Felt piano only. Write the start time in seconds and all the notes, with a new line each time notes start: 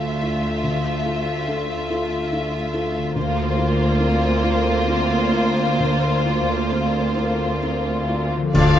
Already playing: D2 D4 F4 A4
0.22 F4 A4
0.64 D2
1.06 F4 A4
1.48 D4 F4 A4
1.90 F4 A4
2.32 D4 F4 A4
2.74 F4 A4
3.16 D2
3.57 F4 A#4
4.00 C4 F4 A#4
4.43 F4 A#4
4.87 C4 F4 A#4
5.33 F4 A#4
5.80 D2
6.25 F4 A#4
6.71 C4 F4 A#4
7.17 F4 A#4
7.63 C4 F4 A#4
8.09 F4 A#4
8.54 D2
8.75 A4